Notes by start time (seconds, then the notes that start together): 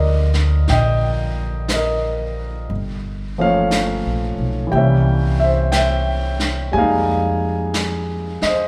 Already playing: D2 D3 F3 G3 A#3 A#4 D5 D#5
0.33 snare
0.68 A#1 G5, brush sweep, snare
0.72 D#5
1.68 brush sweep, snare, hi-hat pedal
1.74 A#4 D#5
2.70 G1, brush sweep
3.38 F3 A3 A#3 C#4 F5
3.44 C#5
3.71 brush sweep, snare, hi-hat pedal
4.05 A#1
4.38 B1
4.67 E3 G3
4.72 C2 A#3 E5 G5, brush sweep
4.78 C#4
5.40 E5
5.44 C5
5.72 G5, brush sweep, snare, hi-hat pedal
5.77 E5
6.39 snare
6.72 F2 G3 G#3 A#3 G#5, brush sweep
6.77 D#4 F5
7.74 brush sweep, snare, hi-hat pedal
8.41 D#5, muted upright bass stroke, snare
8.47 C5